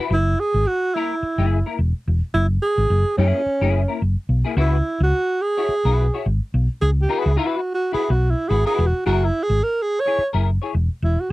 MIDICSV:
0, 0, Header, 1, 5, 480
1, 0, Start_track
1, 0, Tempo, 559701
1, 93, Time_signature, 4, 2, 24, 8
1, 9711, End_track
2, 0, Start_track
2, 0, Title_t, "Alto saxophone"
2, 0, Program_c, 0, 65
2, 116, Note_on_c, 0, 64, 100
2, 343, Note_on_c, 0, 68, 101
2, 356, Note_off_c, 0, 64, 0
2, 578, Note_on_c, 0, 66, 101
2, 591, Note_off_c, 0, 68, 0
2, 811, Note_on_c, 0, 64, 83
2, 824, Note_off_c, 0, 66, 0
2, 1530, Note_off_c, 0, 64, 0
2, 2007, Note_on_c, 0, 64, 93
2, 2115, Note_off_c, 0, 64, 0
2, 2251, Note_on_c, 0, 68, 106
2, 2696, Note_off_c, 0, 68, 0
2, 2725, Note_on_c, 0, 61, 92
2, 3412, Note_off_c, 0, 61, 0
2, 3947, Note_on_c, 0, 64, 77
2, 4286, Note_off_c, 0, 64, 0
2, 4317, Note_on_c, 0, 66, 94
2, 4646, Note_on_c, 0, 68, 105
2, 4659, Note_off_c, 0, 66, 0
2, 5367, Note_off_c, 0, 68, 0
2, 5845, Note_on_c, 0, 68, 84
2, 5918, Note_off_c, 0, 68, 0
2, 6017, Note_on_c, 0, 67, 79
2, 6166, Note_on_c, 0, 68, 82
2, 6179, Note_off_c, 0, 67, 0
2, 6329, Note_on_c, 0, 64, 74
2, 6341, Note_off_c, 0, 68, 0
2, 6488, Note_on_c, 0, 66, 72
2, 6501, Note_off_c, 0, 64, 0
2, 6637, Note_off_c, 0, 66, 0
2, 6642, Note_on_c, 0, 66, 86
2, 6794, Note_off_c, 0, 66, 0
2, 6806, Note_on_c, 0, 68, 90
2, 6954, Note_on_c, 0, 66, 79
2, 6967, Note_off_c, 0, 68, 0
2, 7122, Note_on_c, 0, 64, 85
2, 7135, Note_off_c, 0, 66, 0
2, 7279, Note_on_c, 0, 68, 98
2, 7291, Note_off_c, 0, 64, 0
2, 7429, Note_off_c, 0, 68, 0
2, 7434, Note_on_c, 0, 68, 92
2, 7602, Note_on_c, 0, 66, 79
2, 7615, Note_off_c, 0, 68, 0
2, 7764, Note_off_c, 0, 66, 0
2, 7769, Note_on_c, 0, 66, 91
2, 7930, Note_on_c, 0, 64, 92
2, 7943, Note_off_c, 0, 66, 0
2, 8088, Note_on_c, 0, 68, 100
2, 8101, Note_off_c, 0, 64, 0
2, 8262, Note_on_c, 0, 70, 89
2, 8275, Note_off_c, 0, 68, 0
2, 8423, Note_on_c, 0, 68, 93
2, 8436, Note_off_c, 0, 70, 0
2, 8582, Note_on_c, 0, 73, 103
2, 8595, Note_off_c, 0, 68, 0
2, 8818, Note_off_c, 0, 73, 0
2, 9466, Note_on_c, 0, 64, 78
2, 9610, Note_on_c, 0, 66, 71
2, 9623, Note_off_c, 0, 64, 0
2, 9710, Note_off_c, 0, 66, 0
2, 9711, End_track
3, 0, Start_track
3, 0, Title_t, "Clean electric guitar"
3, 0, Program_c, 1, 27
3, 0, Note_on_c, 1, 64, 73
3, 0, Note_on_c, 1, 66, 81
3, 0, Note_on_c, 1, 71, 86
3, 116, Note_off_c, 1, 66, 0
3, 117, Note_off_c, 1, 71, 0
3, 121, Note_off_c, 1, 64, 0
3, 818, Note_on_c, 1, 58, 69
3, 823, Note_on_c, 1, 64, 82
3, 828, Note_on_c, 1, 70, 87
3, 966, Note_off_c, 1, 58, 0
3, 969, Note_off_c, 1, 64, 0
3, 971, Note_off_c, 1, 70, 0
3, 1186, Note_on_c, 1, 64, 69
3, 1186, Note_on_c, 1, 68, 79
3, 1192, Note_on_c, 1, 58, 64
3, 1350, Note_off_c, 1, 64, 0
3, 1350, Note_off_c, 1, 68, 0
3, 1353, Note_off_c, 1, 58, 0
3, 1425, Note_on_c, 1, 70, 57
3, 1428, Note_on_c, 1, 64, 57
3, 1431, Note_on_c, 1, 58, 50
3, 1521, Note_off_c, 1, 70, 0
3, 1522, Note_off_c, 1, 64, 0
3, 1524, Note_off_c, 1, 58, 0
3, 2722, Note_on_c, 1, 58, 70
3, 2732, Note_on_c, 1, 64, 83
3, 2735, Note_on_c, 1, 68, 91
3, 2906, Note_off_c, 1, 58, 0
3, 2911, Note_off_c, 1, 64, 0
3, 2912, Note_off_c, 1, 68, 0
3, 3098, Note_on_c, 1, 68, 75
3, 3100, Note_on_c, 1, 64, 81
3, 3109, Note_on_c, 1, 58, 60
3, 3265, Note_off_c, 1, 68, 0
3, 3266, Note_off_c, 1, 64, 0
3, 3270, Note_off_c, 1, 58, 0
3, 3329, Note_on_c, 1, 70, 63
3, 3337, Note_on_c, 1, 64, 49
3, 3341, Note_on_c, 1, 58, 49
3, 3431, Note_off_c, 1, 70, 0
3, 3435, Note_off_c, 1, 64, 0
3, 3437, Note_off_c, 1, 58, 0
3, 3813, Note_on_c, 1, 68, 82
3, 3821, Note_on_c, 1, 64, 71
3, 3824, Note_on_c, 1, 58, 74
3, 3908, Note_off_c, 1, 64, 0
3, 3917, Note_off_c, 1, 68, 0
3, 3918, Note_on_c, 1, 64, 84
3, 3921, Note_on_c, 1, 66, 97
3, 3926, Note_on_c, 1, 71, 97
3, 3950, Note_off_c, 1, 58, 0
3, 4074, Note_off_c, 1, 64, 0
3, 4075, Note_off_c, 1, 66, 0
3, 4078, Note_off_c, 1, 71, 0
3, 4780, Note_on_c, 1, 73, 73
3, 4783, Note_on_c, 1, 66, 63
3, 4785, Note_on_c, 1, 64, 65
3, 4908, Note_off_c, 1, 73, 0
3, 4910, Note_off_c, 1, 66, 0
3, 4911, Note_off_c, 1, 64, 0
3, 5018, Note_on_c, 1, 71, 71
3, 5023, Note_on_c, 1, 66, 67
3, 5031, Note_on_c, 1, 64, 53
3, 5185, Note_off_c, 1, 71, 0
3, 5187, Note_off_c, 1, 66, 0
3, 5191, Note_off_c, 1, 64, 0
3, 5264, Note_on_c, 1, 73, 59
3, 5269, Note_on_c, 1, 66, 48
3, 5273, Note_on_c, 1, 64, 52
3, 5359, Note_off_c, 1, 73, 0
3, 5361, Note_off_c, 1, 66, 0
3, 5363, Note_off_c, 1, 64, 0
3, 6078, Note_on_c, 1, 64, 78
3, 6078, Note_on_c, 1, 66, 85
3, 6085, Note_on_c, 1, 71, 99
3, 6264, Note_off_c, 1, 64, 0
3, 6264, Note_off_c, 1, 66, 0
3, 6268, Note_off_c, 1, 71, 0
3, 6313, Note_on_c, 1, 64, 90
3, 6320, Note_on_c, 1, 66, 91
3, 6325, Note_on_c, 1, 71, 96
3, 6502, Note_off_c, 1, 64, 0
3, 6505, Note_off_c, 1, 66, 0
3, 6508, Note_off_c, 1, 71, 0
3, 6793, Note_on_c, 1, 64, 83
3, 6799, Note_on_c, 1, 66, 73
3, 6803, Note_on_c, 1, 71, 77
3, 6953, Note_off_c, 1, 64, 0
3, 6956, Note_off_c, 1, 66, 0
3, 6958, Note_off_c, 1, 71, 0
3, 7278, Note_on_c, 1, 64, 55
3, 7287, Note_on_c, 1, 66, 65
3, 7293, Note_on_c, 1, 71, 61
3, 7407, Note_off_c, 1, 64, 0
3, 7411, Note_off_c, 1, 66, 0
3, 7412, Note_off_c, 1, 71, 0
3, 7422, Note_on_c, 1, 71, 81
3, 7427, Note_on_c, 1, 66, 76
3, 7431, Note_on_c, 1, 64, 70
3, 7589, Note_off_c, 1, 71, 0
3, 7591, Note_off_c, 1, 66, 0
3, 7593, Note_off_c, 1, 64, 0
3, 7767, Note_on_c, 1, 64, 91
3, 7770, Note_on_c, 1, 68, 99
3, 7775, Note_on_c, 1, 70, 104
3, 7921, Note_off_c, 1, 64, 0
3, 7922, Note_off_c, 1, 68, 0
3, 7925, Note_off_c, 1, 70, 0
3, 8624, Note_on_c, 1, 73, 81
3, 8637, Note_on_c, 1, 68, 67
3, 8638, Note_on_c, 1, 64, 62
3, 8753, Note_off_c, 1, 73, 0
3, 8760, Note_off_c, 1, 64, 0
3, 8760, Note_off_c, 1, 68, 0
3, 8860, Note_on_c, 1, 70, 68
3, 8863, Note_on_c, 1, 68, 64
3, 8871, Note_on_c, 1, 64, 61
3, 8991, Note_off_c, 1, 70, 0
3, 8993, Note_off_c, 1, 68, 0
3, 8997, Note_off_c, 1, 64, 0
3, 9105, Note_on_c, 1, 73, 63
3, 9114, Note_on_c, 1, 68, 54
3, 9116, Note_on_c, 1, 64, 49
3, 9202, Note_off_c, 1, 73, 0
3, 9207, Note_off_c, 1, 68, 0
3, 9208, Note_off_c, 1, 64, 0
3, 9711, End_track
4, 0, Start_track
4, 0, Title_t, "Fingered electric bass"
4, 0, Program_c, 2, 33
4, 89, Note_on_c, 2, 30, 109
4, 290, Note_off_c, 2, 30, 0
4, 465, Note_on_c, 2, 32, 84
4, 553, Note_off_c, 2, 32, 0
4, 1184, Note_on_c, 2, 30, 89
4, 1384, Note_off_c, 2, 30, 0
4, 1532, Note_on_c, 2, 28, 86
4, 1643, Note_off_c, 2, 28, 0
4, 1780, Note_on_c, 2, 28, 88
4, 1887, Note_off_c, 2, 28, 0
4, 2008, Note_on_c, 2, 30, 115
4, 2208, Note_off_c, 2, 30, 0
4, 2382, Note_on_c, 2, 32, 85
4, 2470, Note_off_c, 2, 32, 0
4, 2487, Note_on_c, 2, 30, 100
4, 2599, Note_off_c, 2, 30, 0
4, 2729, Note_on_c, 2, 42, 113
4, 2840, Note_off_c, 2, 42, 0
4, 3099, Note_on_c, 2, 30, 93
4, 3299, Note_off_c, 2, 30, 0
4, 3446, Note_on_c, 2, 30, 82
4, 3558, Note_off_c, 2, 30, 0
4, 3678, Note_on_c, 2, 35, 78
4, 3793, Note_off_c, 2, 35, 0
4, 3916, Note_on_c, 2, 37, 116
4, 4120, Note_off_c, 2, 37, 0
4, 4292, Note_on_c, 2, 37, 97
4, 4384, Note_off_c, 2, 37, 0
4, 5017, Note_on_c, 2, 35, 93
4, 5219, Note_off_c, 2, 35, 0
4, 5368, Note_on_c, 2, 32, 91
4, 5479, Note_off_c, 2, 32, 0
4, 5608, Note_on_c, 2, 35, 91
4, 5720, Note_off_c, 2, 35, 0
4, 5848, Note_on_c, 2, 37, 111
4, 6048, Note_off_c, 2, 37, 0
4, 6224, Note_on_c, 2, 37, 83
4, 6312, Note_off_c, 2, 37, 0
4, 6947, Note_on_c, 2, 35, 95
4, 7146, Note_off_c, 2, 35, 0
4, 7293, Note_on_c, 2, 32, 100
4, 7404, Note_off_c, 2, 32, 0
4, 7535, Note_on_c, 2, 28, 102
4, 7645, Note_off_c, 2, 28, 0
4, 7774, Note_on_c, 2, 30, 116
4, 7973, Note_off_c, 2, 30, 0
4, 8144, Note_on_c, 2, 32, 85
4, 8233, Note_off_c, 2, 32, 0
4, 8869, Note_on_c, 2, 30, 92
4, 9068, Note_off_c, 2, 30, 0
4, 9215, Note_on_c, 2, 28, 84
4, 9326, Note_off_c, 2, 28, 0
4, 9454, Note_on_c, 2, 28, 91
4, 9566, Note_off_c, 2, 28, 0
4, 9711, End_track
5, 0, Start_track
5, 0, Title_t, "Muted fingered electric bass strokes"
5, 1052, Note_on_c, 9, 29, 50
5, 1138, Note_off_c, 9, 29, 0
5, 2968, Note_on_c, 9, 29, 43
5, 3054, Note_off_c, 9, 29, 0
5, 4877, Note_on_c, 9, 29, 46
5, 4962, Note_off_c, 9, 29, 0
5, 6812, Note_on_c, 9, 29, 52
5, 6898, Note_off_c, 9, 29, 0
5, 8734, Note_on_c, 9, 29, 44
5, 8819, Note_off_c, 9, 29, 0
5, 9711, End_track
0, 0, End_of_file